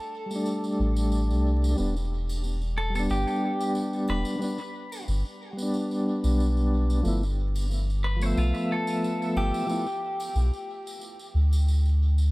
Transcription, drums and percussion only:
0.31 tambourine medium
0.46 tambourine medium
0.64 tambourine soft
0.97 tambourine medium
1.12 tambourine medium
1.30 tambourine soft
1.64 tambourine medium
1.78 tambourine medium
1.96 tambourine soft
2.29 tambourine medium
2.29 triangle medium
2.44 tambourine medium
2.62 tambourine soft
2.95 tambourine medium
3.10 tambourine medium
3.27 tambourine soft
3.61 tambourine medium
3.75 tambourine medium
3.93 tambourine soft
4.08 triangle medium
4.25 tambourine medium
4.42 tambourine medium
4.58 tambourine soft
4.92 tambourine medium
4.92 triangle medium
5.08 tambourine medium
5.25 tambourine soft
5.58 tambourine medium
5.74 tambourine medium
5.91 tambourine soft
6.24 tambourine medium
6.40 tambourine medium
6.57 tambourine soft
6.90 tambourine medium
7.05 tambourine medium
7.23 tambourine soft
7.56 tambourine medium
7.56 triangle medium
7.71 tambourine medium
7.90 tambourine soft
8.21 tambourine medium
8.37 tambourine medium
8.54 tambourine soft
8.87 tambourine medium
9.04 tambourine medium
9.22 tambourine soft
9.37 triangle medium
9.54 tambourine medium
9.69 tambourine medium
9.86 tambourine soft
10.20 tambourine medium
10.20 triangle medium
10.36 tambourine medium
10.53 tambourine soft
10.87 tambourine medium
11.01 tambourine medium
11.19 tambourine soft
11.53 tambourine medium
11.53 triangle medium
11.68 tambourine medium
11.85 tambourine soft
12.18 tambourine medium

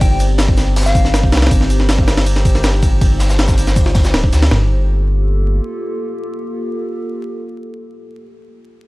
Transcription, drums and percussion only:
0.01 kick loud
0.01 ride medium
0.01 shaker medium
0.20 ride medium
0.20 shaker medium
0.38 snare loud
0.38 ride medium
0.38 shaker medium
0.48 kick loud
0.57 snare soft
0.57 ride medium
0.57 shaker medium
0.76 snare medium
0.76 open hi-hat medium
0.76 shaker medium
0.81 snare medium
0.81 shaker medium
0.86 snare loud
0.86 shaker medium
0.95 kick loud
0.95 ride medium
0.95 shaker medium
1.05 snare soft
1.05 closed hi-hat soft
1.14 snare loud
1.14 ride medium
1.14 shaker loud
1.23 kick medium
1.32 snare medium
1.32 snare loud
1.32 ride medium
1.32 shaker medium
1.37 snare medium
1.37 ride medium
1.42 snare medium
1.42 ride medium
1.47 snare medium
1.47 ride medium
1.51 kick loud
1.51 ride medium
1.51 shaker medium
1.61 snare soft
1.70 ride medium
1.70 shaker medium
1.80 snare soft
1.89 snare loud
1.89 ride medium
1.89 shaker medium
1.99 kick loud
2.08 snare loud
2.08 ride medium
2.08 shaker medium
2.17 snare loud
2.17 ride medium
2.26 ride medium
2.26 shaker medium
2.36 snare soft
2.36 closed hi-hat soft
2.45 kick loud
2.45 ride medium
2.45 shaker medium
2.55 snare medium
2.55 closed hi-hat soft
2.63 snare loud
2.63 ride medium
2.63 shaker medium
2.82 kick loud
2.82 ride medium
2.82 shaker medium
3.01 kick loud
3.01 ride medium
3.01 shaker medium
3.20 snare medium
3.20 ride medium
3.20 shaker medium
3.30 snare loud
3.30 shaker medium
3.39 snare loud
3.39 ride medium
3.39 shaker medium
3.48 kick loud
3.48 snare loud
3.48 shaker medium
3.58 ride medium
3.58 shaker medium
3.67 snare soft
3.67 snare loud
3.67 shaker medium
3.76 kick medium
3.76 ride medium
3.76 shaker medium
3.86 snare medium
3.95 kick loud
3.95 snare loud
3.95 ride medium
3.95 shaker medium
4.04 snare soft
4.04 snare loud
4.04 shaker medium
4.14 snare loud
4.14 ride medium
4.24 kick medium
4.33 snare loud
4.33 ride medium
4.33 shaker medium
4.42 snare loud
4.42 ride medium
4.51 snare loud
4.51 floor tom loud

